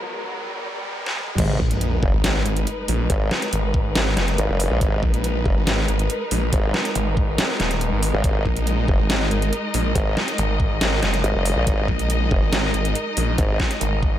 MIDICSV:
0, 0, Header, 1, 7, 480
1, 0, Start_track
1, 0, Key_signature, 5, "minor"
1, 0, Tempo, 428571
1, 1550, Time_signature, 4, 2, 24, 8
1, 15889, End_track
2, 0, Start_track
2, 0, Title_t, "String section"
2, 0, Program_c, 0, 48
2, 0, Note_on_c, 0, 44, 74
2, 0, Note_on_c, 0, 56, 65
2, 0, Note_on_c, 0, 59, 64
2, 0, Note_on_c, 0, 70, 76
2, 1505, Note_off_c, 0, 44, 0
2, 1505, Note_off_c, 0, 56, 0
2, 1505, Note_off_c, 0, 59, 0
2, 1505, Note_off_c, 0, 70, 0
2, 1548, Note_on_c, 0, 63, 68
2, 1549, Note_on_c, 0, 70, 70
2, 1549, Note_on_c, 0, 71, 83
2, 1550, Note_on_c, 0, 56, 79
2, 9209, Note_off_c, 0, 71, 0
2, 9230, Note_on_c, 0, 75, 84
2, 15889, Note_off_c, 0, 56, 0
2, 15889, Note_off_c, 0, 63, 0
2, 15889, Note_off_c, 0, 70, 0
2, 15889, Note_off_c, 0, 75, 0
2, 15889, End_track
3, 0, Start_track
3, 0, Title_t, "Detuned saw bass"
3, 0, Program_c, 1, 39
3, 1789, Note_on_c, 1, 34, 100
3, 2251, Note_off_c, 1, 34, 0
3, 2393, Note_on_c, 1, 32, 103
3, 2731, Note_off_c, 1, 32, 0
3, 2749, Note_on_c, 1, 32, 100
3, 2971, Note_off_c, 1, 32, 0
3, 3230, Note_on_c, 1, 34, 93
3, 3451, Note_off_c, 1, 34, 0
3, 3950, Note_on_c, 1, 32, 101
3, 4411, Note_off_c, 1, 32, 0
3, 4431, Note_on_c, 1, 32, 93
3, 4651, Note_off_c, 1, 32, 0
3, 4670, Note_on_c, 1, 30, 102
3, 4891, Note_off_c, 1, 30, 0
3, 5630, Note_on_c, 1, 34, 101
3, 6091, Note_off_c, 1, 34, 0
3, 6233, Note_on_c, 1, 32, 101
3, 6571, Note_off_c, 1, 32, 0
3, 6591, Note_on_c, 1, 32, 104
3, 6812, Note_off_c, 1, 32, 0
3, 7071, Note_on_c, 1, 34, 93
3, 7292, Note_off_c, 1, 34, 0
3, 7790, Note_on_c, 1, 32, 95
3, 8251, Note_off_c, 1, 32, 0
3, 8510, Note_on_c, 1, 27, 100
3, 8854, Note_off_c, 1, 27, 0
3, 8874, Note_on_c, 1, 32, 92
3, 9094, Note_off_c, 1, 32, 0
3, 9470, Note_on_c, 1, 34, 101
3, 9931, Note_off_c, 1, 34, 0
3, 10074, Note_on_c, 1, 32, 96
3, 10411, Note_off_c, 1, 32, 0
3, 10430, Note_on_c, 1, 32, 96
3, 10651, Note_off_c, 1, 32, 0
3, 10910, Note_on_c, 1, 34, 94
3, 11131, Note_off_c, 1, 34, 0
3, 11630, Note_on_c, 1, 32, 99
3, 12091, Note_off_c, 1, 32, 0
3, 12111, Note_on_c, 1, 32, 96
3, 12332, Note_off_c, 1, 32, 0
3, 12351, Note_on_c, 1, 30, 101
3, 12572, Note_off_c, 1, 30, 0
3, 13309, Note_on_c, 1, 34, 105
3, 13771, Note_off_c, 1, 34, 0
3, 13914, Note_on_c, 1, 32, 101
3, 14251, Note_off_c, 1, 32, 0
3, 14270, Note_on_c, 1, 32, 98
3, 14491, Note_off_c, 1, 32, 0
3, 14751, Note_on_c, 1, 34, 94
3, 14972, Note_off_c, 1, 34, 0
3, 15470, Note_on_c, 1, 32, 99
3, 15889, Note_off_c, 1, 32, 0
3, 15889, End_track
4, 0, Start_track
4, 0, Title_t, "Wobble bass"
4, 0, Program_c, 2, 39
4, 1550, Note_on_c, 2, 32, 105
4, 1771, Note_off_c, 2, 32, 0
4, 2270, Note_on_c, 2, 30, 100
4, 2373, Note_off_c, 2, 30, 0
4, 3470, Note_on_c, 2, 32, 103
4, 3692, Note_off_c, 2, 32, 0
4, 4910, Note_on_c, 2, 32, 98
4, 5013, Note_off_c, 2, 32, 0
4, 5033, Note_on_c, 2, 30, 104
4, 5253, Note_off_c, 2, 30, 0
4, 5272, Note_on_c, 2, 34, 97
4, 5371, Note_off_c, 2, 34, 0
4, 5390, Note_on_c, 2, 32, 104
4, 5611, Note_off_c, 2, 32, 0
4, 6110, Note_on_c, 2, 30, 97
4, 6213, Note_off_c, 2, 30, 0
4, 7310, Note_on_c, 2, 32, 100
4, 7532, Note_off_c, 2, 32, 0
4, 9112, Note_on_c, 2, 32, 101
4, 9211, Note_off_c, 2, 32, 0
4, 9230, Note_on_c, 2, 32, 100
4, 9451, Note_off_c, 2, 32, 0
4, 9949, Note_on_c, 2, 30, 96
4, 10053, Note_off_c, 2, 30, 0
4, 11150, Note_on_c, 2, 32, 105
4, 11371, Note_off_c, 2, 32, 0
4, 12589, Note_on_c, 2, 32, 94
4, 12693, Note_off_c, 2, 32, 0
4, 12713, Note_on_c, 2, 30, 100
4, 12933, Note_off_c, 2, 30, 0
4, 12952, Note_on_c, 2, 34, 98
4, 13051, Note_off_c, 2, 34, 0
4, 13069, Note_on_c, 2, 32, 102
4, 13291, Note_off_c, 2, 32, 0
4, 13790, Note_on_c, 2, 30, 97
4, 13893, Note_off_c, 2, 30, 0
4, 14990, Note_on_c, 2, 32, 105
4, 15211, Note_off_c, 2, 32, 0
4, 15889, End_track
5, 0, Start_track
5, 0, Title_t, "Riser"
5, 0, Program_c, 3, 103
5, 0, Note_on_c, 3, 60, 76
5, 1550, Note_off_c, 3, 60, 0
5, 15889, End_track
6, 0, Start_track
6, 0, Title_t, "Sub drop"
6, 0, Program_c, 4, 103
6, 1550, Note_on_c, 4, 60, 83
6, 3470, Note_off_c, 4, 60, 0
6, 15889, End_track
7, 0, Start_track
7, 0, Title_t, "Drums"
7, 1192, Note_on_c, 9, 38, 53
7, 1304, Note_off_c, 9, 38, 0
7, 1309, Note_on_c, 9, 47, 81
7, 1421, Note_off_c, 9, 47, 0
7, 1433, Note_on_c, 9, 45, 86
7, 1545, Note_off_c, 9, 45, 0
7, 1549, Note_on_c, 9, 42, 87
7, 1549, Note_on_c, 9, 49, 108
7, 1550, Note_on_c, 9, 36, 122
7, 1661, Note_off_c, 9, 42, 0
7, 1661, Note_off_c, 9, 49, 0
7, 1662, Note_off_c, 9, 36, 0
7, 1790, Note_on_c, 9, 36, 65
7, 1902, Note_off_c, 9, 36, 0
7, 1913, Note_on_c, 9, 42, 54
7, 2025, Note_off_c, 9, 42, 0
7, 2029, Note_on_c, 9, 42, 87
7, 2141, Note_off_c, 9, 42, 0
7, 2270, Note_on_c, 9, 36, 110
7, 2382, Note_off_c, 9, 36, 0
7, 2510, Note_on_c, 9, 38, 116
7, 2510, Note_on_c, 9, 42, 76
7, 2622, Note_off_c, 9, 38, 0
7, 2622, Note_off_c, 9, 42, 0
7, 2750, Note_on_c, 9, 42, 55
7, 2862, Note_off_c, 9, 42, 0
7, 2873, Note_on_c, 9, 42, 54
7, 2985, Note_off_c, 9, 42, 0
7, 2990, Note_on_c, 9, 42, 79
7, 3102, Note_off_c, 9, 42, 0
7, 3229, Note_on_c, 9, 46, 93
7, 3341, Note_off_c, 9, 46, 0
7, 3470, Note_on_c, 9, 36, 126
7, 3470, Note_on_c, 9, 42, 89
7, 3582, Note_off_c, 9, 36, 0
7, 3582, Note_off_c, 9, 42, 0
7, 3709, Note_on_c, 9, 38, 65
7, 3821, Note_off_c, 9, 38, 0
7, 3833, Note_on_c, 9, 42, 52
7, 3945, Note_off_c, 9, 42, 0
7, 3950, Note_on_c, 9, 42, 86
7, 4062, Note_off_c, 9, 42, 0
7, 4190, Note_on_c, 9, 36, 110
7, 4302, Note_off_c, 9, 36, 0
7, 4430, Note_on_c, 9, 38, 125
7, 4430, Note_on_c, 9, 42, 77
7, 4542, Note_off_c, 9, 38, 0
7, 4542, Note_off_c, 9, 42, 0
7, 4670, Note_on_c, 9, 38, 64
7, 4670, Note_on_c, 9, 42, 55
7, 4782, Note_off_c, 9, 38, 0
7, 4782, Note_off_c, 9, 42, 0
7, 4793, Note_on_c, 9, 42, 54
7, 4905, Note_off_c, 9, 42, 0
7, 4910, Note_on_c, 9, 42, 86
7, 5022, Note_off_c, 9, 42, 0
7, 5150, Note_on_c, 9, 46, 94
7, 5262, Note_off_c, 9, 46, 0
7, 5390, Note_on_c, 9, 36, 123
7, 5390, Note_on_c, 9, 42, 83
7, 5502, Note_off_c, 9, 36, 0
7, 5502, Note_off_c, 9, 42, 0
7, 5630, Note_on_c, 9, 36, 65
7, 5742, Note_off_c, 9, 36, 0
7, 5754, Note_on_c, 9, 42, 53
7, 5866, Note_off_c, 9, 42, 0
7, 5870, Note_on_c, 9, 42, 80
7, 5982, Note_off_c, 9, 42, 0
7, 6110, Note_on_c, 9, 36, 113
7, 6222, Note_off_c, 9, 36, 0
7, 6350, Note_on_c, 9, 38, 118
7, 6350, Note_on_c, 9, 42, 81
7, 6462, Note_off_c, 9, 38, 0
7, 6462, Note_off_c, 9, 42, 0
7, 6590, Note_on_c, 9, 42, 54
7, 6702, Note_off_c, 9, 42, 0
7, 6713, Note_on_c, 9, 42, 56
7, 6825, Note_off_c, 9, 42, 0
7, 6829, Note_on_c, 9, 42, 82
7, 6941, Note_off_c, 9, 42, 0
7, 7070, Note_on_c, 9, 46, 93
7, 7182, Note_off_c, 9, 46, 0
7, 7309, Note_on_c, 9, 42, 83
7, 7310, Note_on_c, 9, 36, 120
7, 7421, Note_off_c, 9, 42, 0
7, 7422, Note_off_c, 9, 36, 0
7, 7550, Note_on_c, 9, 38, 66
7, 7662, Note_off_c, 9, 38, 0
7, 7673, Note_on_c, 9, 42, 51
7, 7785, Note_off_c, 9, 42, 0
7, 7789, Note_on_c, 9, 42, 83
7, 7901, Note_off_c, 9, 42, 0
7, 8030, Note_on_c, 9, 36, 113
7, 8142, Note_off_c, 9, 36, 0
7, 8270, Note_on_c, 9, 38, 117
7, 8270, Note_on_c, 9, 42, 77
7, 8382, Note_off_c, 9, 38, 0
7, 8382, Note_off_c, 9, 42, 0
7, 8510, Note_on_c, 9, 38, 62
7, 8510, Note_on_c, 9, 42, 53
7, 8622, Note_off_c, 9, 38, 0
7, 8622, Note_off_c, 9, 42, 0
7, 8633, Note_on_c, 9, 42, 53
7, 8745, Note_off_c, 9, 42, 0
7, 8749, Note_on_c, 9, 42, 78
7, 8861, Note_off_c, 9, 42, 0
7, 8989, Note_on_c, 9, 46, 86
7, 9101, Note_off_c, 9, 46, 0
7, 9230, Note_on_c, 9, 36, 121
7, 9230, Note_on_c, 9, 42, 76
7, 9342, Note_off_c, 9, 36, 0
7, 9342, Note_off_c, 9, 42, 0
7, 9470, Note_on_c, 9, 36, 63
7, 9582, Note_off_c, 9, 36, 0
7, 9593, Note_on_c, 9, 42, 47
7, 9705, Note_off_c, 9, 42, 0
7, 9710, Note_on_c, 9, 42, 77
7, 9822, Note_off_c, 9, 42, 0
7, 9950, Note_on_c, 9, 36, 109
7, 10062, Note_off_c, 9, 36, 0
7, 10190, Note_on_c, 9, 38, 112
7, 10190, Note_on_c, 9, 42, 72
7, 10302, Note_off_c, 9, 38, 0
7, 10302, Note_off_c, 9, 42, 0
7, 10429, Note_on_c, 9, 42, 51
7, 10541, Note_off_c, 9, 42, 0
7, 10553, Note_on_c, 9, 42, 51
7, 10665, Note_off_c, 9, 42, 0
7, 10670, Note_on_c, 9, 42, 75
7, 10782, Note_off_c, 9, 42, 0
7, 10910, Note_on_c, 9, 46, 89
7, 11022, Note_off_c, 9, 46, 0
7, 11149, Note_on_c, 9, 36, 117
7, 11150, Note_on_c, 9, 42, 78
7, 11261, Note_off_c, 9, 36, 0
7, 11262, Note_off_c, 9, 42, 0
7, 11390, Note_on_c, 9, 38, 58
7, 11502, Note_off_c, 9, 38, 0
7, 11513, Note_on_c, 9, 42, 49
7, 11625, Note_off_c, 9, 42, 0
7, 11629, Note_on_c, 9, 42, 79
7, 11741, Note_off_c, 9, 42, 0
7, 11869, Note_on_c, 9, 36, 106
7, 11981, Note_off_c, 9, 36, 0
7, 12109, Note_on_c, 9, 38, 113
7, 12109, Note_on_c, 9, 42, 75
7, 12221, Note_off_c, 9, 38, 0
7, 12221, Note_off_c, 9, 42, 0
7, 12349, Note_on_c, 9, 38, 59
7, 12349, Note_on_c, 9, 42, 50
7, 12461, Note_off_c, 9, 38, 0
7, 12461, Note_off_c, 9, 42, 0
7, 12473, Note_on_c, 9, 42, 48
7, 12585, Note_off_c, 9, 42, 0
7, 12590, Note_on_c, 9, 42, 73
7, 12702, Note_off_c, 9, 42, 0
7, 12830, Note_on_c, 9, 46, 95
7, 12942, Note_off_c, 9, 46, 0
7, 13069, Note_on_c, 9, 36, 115
7, 13069, Note_on_c, 9, 42, 83
7, 13181, Note_off_c, 9, 36, 0
7, 13181, Note_off_c, 9, 42, 0
7, 13310, Note_on_c, 9, 36, 58
7, 13422, Note_off_c, 9, 36, 0
7, 13433, Note_on_c, 9, 42, 51
7, 13545, Note_off_c, 9, 42, 0
7, 13550, Note_on_c, 9, 42, 84
7, 13662, Note_off_c, 9, 42, 0
7, 13790, Note_on_c, 9, 36, 105
7, 13902, Note_off_c, 9, 36, 0
7, 14029, Note_on_c, 9, 38, 105
7, 14029, Note_on_c, 9, 42, 74
7, 14141, Note_off_c, 9, 38, 0
7, 14141, Note_off_c, 9, 42, 0
7, 14270, Note_on_c, 9, 42, 50
7, 14382, Note_off_c, 9, 42, 0
7, 14392, Note_on_c, 9, 42, 51
7, 14504, Note_off_c, 9, 42, 0
7, 14509, Note_on_c, 9, 42, 77
7, 14621, Note_off_c, 9, 42, 0
7, 14749, Note_on_c, 9, 46, 97
7, 14861, Note_off_c, 9, 46, 0
7, 14988, Note_on_c, 9, 42, 88
7, 14990, Note_on_c, 9, 36, 116
7, 15100, Note_off_c, 9, 42, 0
7, 15102, Note_off_c, 9, 36, 0
7, 15229, Note_on_c, 9, 38, 57
7, 15230, Note_on_c, 9, 36, 60
7, 15341, Note_off_c, 9, 38, 0
7, 15342, Note_off_c, 9, 36, 0
7, 15352, Note_on_c, 9, 42, 53
7, 15464, Note_off_c, 9, 42, 0
7, 15469, Note_on_c, 9, 42, 81
7, 15581, Note_off_c, 9, 42, 0
7, 15710, Note_on_c, 9, 36, 104
7, 15822, Note_off_c, 9, 36, 0
7, 15889, End_track
0, 0, End_of_file